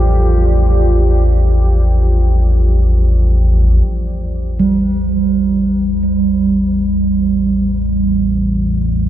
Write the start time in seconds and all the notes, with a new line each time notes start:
Already playing: A1 E2 F4 G4 A4 C5 D5
3.86 A1 E2
4.60 G3